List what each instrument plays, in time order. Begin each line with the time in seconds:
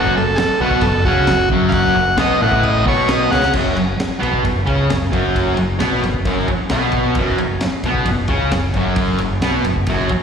Already playing: picked electric bass F#1, distorted electric guitar F#2 F#3, transistor combo organ F#4
0.16 picked electric bass F#1, distorted electric guitar F#2, transistor combo organ A4
0.36 transistor combo organ G#4 A4, muted distorted electric guitar stroke, snare, crash
0.60 picked electric bass B1, distorted electric guitar B2 B3, transistor combo organ F#4
0.71 kick
0.81 picked electric bass F#1, distorted electric guitar F#2, transistor combo organ A4, kick, crash
1.04 picked electric bass C#2, distorted electric guitar C#3 C#4, transistor combo organ F#4, kick
1.27 picked electric bass F#1, distorted electric guitar F#2, snare, crash
1.50 picked electric bass F#1, distorted electric guitar F#2 F#3, kick
1.69 transistor combo organ F5, kick, crash
1.73 transistor combo organ F#5
1.95 picked electric bass F#1, distorted electric guitar F#2
2.17 picked electric bass B1, distorted electric guitar B2 B3, transistor combo organ D#5, snare, crash
2.41 picked electric bass A1, distorted electric guitar A2 A3, transistor combo organ F#5
2.52 kick
2.63 transistor combo organ D#5, kick, crash
2.85 picked electric bass B1, distorted electric guitar B2 B3, transistor combo organ C#5, kick
3.08 transistor combo organ D#5, snare, crash
3.31 picked electric bass C#2, distorted electric guitar C#3 C#4, transistor combo organ F#5, snare
3.42 snare
3.53 picked electric bass F#1, distorted electric guitar F#2 F#3, kick, crash
3.75 picked electric bass F#1, distorted electric guitar F#2, ride
3.97 muted distorted electric guitar stroke, snare, ride
4.19 picked electric bass B1, distorted electric guitar B2 B3, ride
4.34 kick
4.43 picked electric bass F#1, distorted electric guitar F#2, kick, ride
4.66 picked electric bass C#2, distorted electric guitar C#3 C#4, kick, ride
4.89 picked electric bass F#1, distorted electric guitar F#2, snare, ride
5.12 picked electric bass F#1, distorted electric guitar F#2 F#3, kick, ride
5.35 kick, ride
5.55 picked electric bass F#1, distorted electric guitar F#2, ride
5.79 picked electric bass B1, distorted electric guitar B2 B3, snare, ride
6.02 picked electric bass F#1, distorted electric guitar F#2, ride
6.14 kick
6.25 picked electric bass F#1, distorted electric guitar F#2 F#3, kick, ride
6.48 muted picked electric bass stroke, muted distorted electric guitar stroke, kick, ride
6.69 picked electric bass B1, distorted electric guitar B2 B3, snare, ride
6.92 kick, ride
7.15 picked electric bass F#1, distorted electric guitar F#2 F#3, kick, ride
7.37 picked electric bass F#1, distorted electric guitar F#2, ride
7.59 muted picked electric bass stroke, snare, ride
7.63 muted distorted electric guitar stroke
7.83 picked electric bass B1, distorted electric guitar B2 B3, ride
7.95 kick
8.05 picked electric bass F#1, distorted electric guitar F#2, kick, ride
8.28 picked electric bass C#2, distorted electric guitar C#3 C#4, kick, ride
8.50 picked electric bass F#1, distorted electric guitar F#2, snare, ride
8.74 picked electric bass F#1, distorted electric guitar F#2 F#3, kick, ride
8.96 kick, ride
9.18 picked electric bass F#1, distorted electric guitar F#2, ride
9.40 picked electric bass B1, distorted electric guitar B2 B3, snare, ride
9.63 picked electric bass F#1, distorted electric guitar F#2, ride
9.76 kick
9.87 picked electric bass F#1, distorted electric guitar F#2 F#3, kick, ride
10.09 muted picked electric bass stroke, muted distorted electric guitar stroke, kick, ride